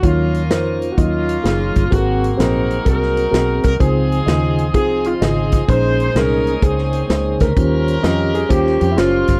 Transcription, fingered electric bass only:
X:1
M:4/4
L:1/8
Q:"Swing" 1/4=127
K:Ebdor
V:1 name="Fingered electric bass" clef=bass
E,,2 F,,2 E,,2 G,,, =G,,, | A,,,2 B,,,2 C,,2 _C,, =C,, | D,,2 E,,2 C,,2 A,,,2 | B,,,2 C,,2 D,,2 D,, =D,, |
E,,2 F,,2 E,, F,, G,,, =G,,, |]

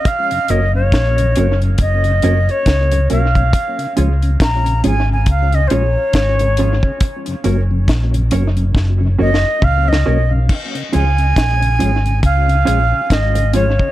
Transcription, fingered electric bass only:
X:1
M:4/4
L:1/16
Q:"Swing 16ths" 1/4=69
K:Dbmix
V:1 name="Fingered electric bass" clef=bass
z2 G,,,2 B,,,2 G,,,2 G,,,2 G,,, z D,,2 C,,2 | z2 D,,2 B,,,2 A,,,2 D,,2 B,,, z A,,,3 z | z2 G,,,2 B,,,2 G,,,2 G,,,2 G,,, z D,,2 C,,2 | z2 D,,2 B,,,2 A,,,2 D,,2 B,,, z A,,,3 z |]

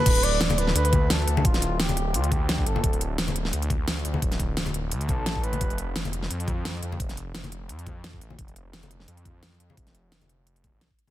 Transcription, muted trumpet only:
X:1
M:4/4
L:1/8
Q:"Swing 16ths" 1/4=173
K:Ddor
V:1 name="Muted trumpet"
B d2 B B2 A2 | F2 G2 F G2 A- | A z6 z | z4 z A2 B- |
B z6 z | z8 | z8 | z8 |]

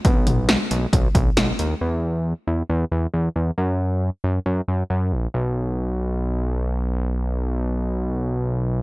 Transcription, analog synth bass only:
X:1
M:4/4
L:1/16
Q:1/4=136
K:F#mix
V:1 name="Analog synth bass" clef=bass
B,,,4- B,,, z B,,,2 B,,,2 B,,,2 B,,,2 D,,2 | E,,4- E,, z E,,2 E,,2 E,,2 E,,2 E,,2 | F,,4- F,, z F,,2 F,,2 F,,2 F,,2 A,,,2 | B,,,16- |
B,,,16 |]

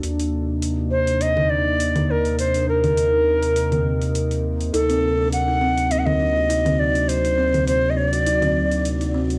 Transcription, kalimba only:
X:1
M:4/4
L:1/16
Q:"Swing 16ths" 1/4=102
K:none
V:1 name="Kalimba"
z16 | z16 | _E C z D z E C z C2 D ^F E C z D | z _E C z C2 D ^F E C z D z E C z |]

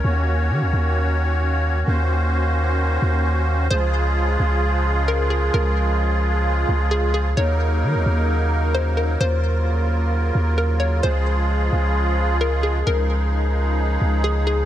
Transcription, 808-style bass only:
X:1
M:4/4
L:1/16
Q:1/4=131
K:Db
V:1 name="808-style bass" clef=bass
E,,4 E, E,, E,,8- E,,2 | E,,8- E,,2 E,,6 | D,,6 D,,8- D,,2 | D,,8- D,,2 D,,6 |
E,,4 E, E,, E,,8- E,,2 | E,,8- E,,2 E,,6 | D,,6 D,,8- D,,2 | D,,8- D,,2 D,,6 |]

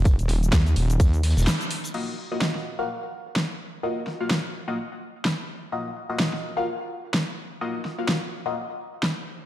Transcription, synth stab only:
X:1
M:4/4
L:1/16
Q:"Swing 16ths" 1/4=127
K:Ebm
V:1 name="Synth stab"
z16 | [B,FGe]2 z [B,FGe]4 [B,FGf] z8 | [B,FGe]2 z [B,FGf]2 z2 [B,FGe] z8 | [B,FGe]2 z [B,FGe]4 [B,FGf] z8 |
[B,FGe]2 z [B,FGf]2 z2 [B,FGe] z8 |]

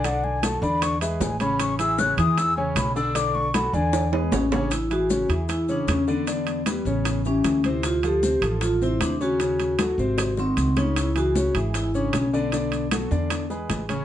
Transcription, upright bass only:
X:1
M:4/4
L:1/8
Q:1/4=154
K:A
V:1 name="Upright bass" clef=bass
B,,,3 E,,3 A,,,2- | A,,,3 E,,3 B,,,2- | B,,,3 E,,3 A,,,2- | A,,,3 E,,3 E,,2- |
E,,3 A,,,3 D,,2- | D,,3 A,,,3 ^D,,2- | ^D,,3 G,,,3 C,,2- | C,,3 G,,,3 B,,,2- |
B,,,3 E,,3 A,,,2 |]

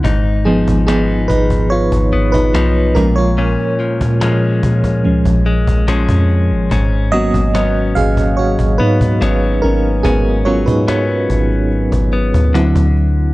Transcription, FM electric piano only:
X:1
M:4/4
L:1/16
Q:1/4=72
K:G#dor
V:1 name="FM electric piano"
z2 [B,G]2 [B,G]2 [DB]2 [Ec]3 [DB]3 [CA] [Ec]- | [Ec]3 z12 z | z2 [Fd]4 [Ge]2 [Fc]2 [DB]4 [CA]2 | [B,G]2 [Ec] [DB]4 z8 z |]
V:2 name="FM electric piano"
z2 [E,B,D]6 z6 [E,G,C]2 | z8 [E,G,C]2 z6 | z2 [F,A,B,C]6 z8 | z2 [F,B,CA]2 z8 [F,=C=E]2 z2 |]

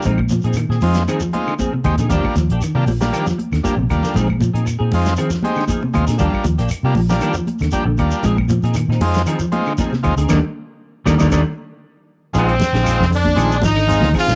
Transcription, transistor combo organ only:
X:1
M:4/4
L:1/16
Q:"Swing 16ths" 1/4=117
K:Bbmix
V:1 name="Transistor combo organ"
z6 [A,CEF]2 z2 [A,CEF]2 z2 [A,CEG] z | [G,B,DF]2 z3 [G,B,DF] z [G,B,DF]2 z3 [G,B,DF] z [G,B,DF]2 | z6 [A,CEF]2 z2 [A,CEG]2 z2 [A,CEF] z | [G,B,DF]2 z3 [G,B,DF] z [G,B,DF]2 z3 [G,B,DG] z [G,B,DF]2 |
z6 [A,CEF]2 z2 [A,CEF]2 z2 [A,CEF] z | [B,DE] z4 z [B,DE] [B,DE] [B,DE] z6 z | [A,CEF]2 z2 [A,CEF]2 z2 [A,CEA]2 z2 [A,CEF]2 z2 |]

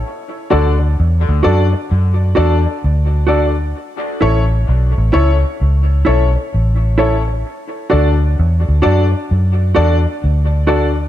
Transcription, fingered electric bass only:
X:1
M:4/4
L:1/16
Q:"Swing 16ths" 1/4=65
K:Dlyd
V:1 name="Fingered electric bass" clef=bass
z2 D,,2 E,, D,, F,, z F,,2 E,, z D,,4 | z2 A,,,2 B,,, A,,, C,, z C,,2 B,,, z A,,,4 | z2 D,,2 E,, D,, F,, z F,,2 E,, z D,,4 |]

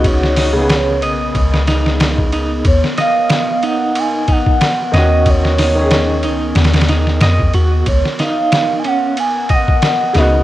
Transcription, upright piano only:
X:1
M:4/4
L:1/16
Q:"Swing 16ths" 1/4=92
K:Ebm
V:1 name="Upright piano"
[D,CG]3 [D,CA]12- [D,CA] | z12 z2 [E,DG]2- | [E,DG]3 [E,DA]12- [E,DA] | z12 z2 [D,CG]2 |]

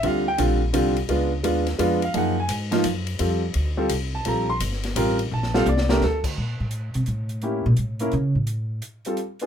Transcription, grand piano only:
X:1
M:3/4
L:1/8
Q:"Swing" 1/4=171
K:Bb
V:1 name="Grand piano"
[D,G,CFf] g [D,G,CF] z [D,G,CF] z | [_A,_CDF] z [A,CDF] z [A,CDF] f | [F,B,E_A_g] _a z [F,B,EF] z2 | [G,CFA] z2 [G,CFA] z a |
[G,CFAb] c' z2 [G,CFB] z | a [G,CFAf] d [A,DGB] A z | z6 | [B,^C=EG] z2 [B,CEB] z2 |
z3 [G,CFA] z [_CDF_A] |]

